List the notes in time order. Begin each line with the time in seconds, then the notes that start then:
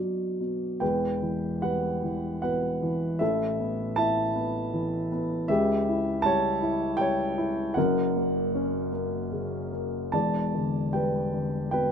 Already playing: B2 D4 F#4 D5
0.00 F#3
0.40 B2
0.80 E1 E2 B4 G5
1.22 E3
1.62 G3 B4 F#5
2.03 E3
2.42 B2 B4 F#5
2.82 E3
3.19 A1 A2 A4 E5
3.60 B3
3.96 E4 E5 A5
4.35 B3
4.73 E3
5.12 B3
5.48 C#2 C#3 G4 E5
5.88 E4
6.22 G3 C#5 A5
6.62 E4
6.97 G3 G5
7.01 C#5
7.38 E4
7.74 F#1 F#2 A#4 F#5
8.16 A#3
8.55 C#4
8.93 A#3
9.32 C#3
9.72 A#3
10.12 E1 E2 D5 A5
10.54 D3
10.93 G3 B4 G5
11.33 D3
11.71 B2 B4 G5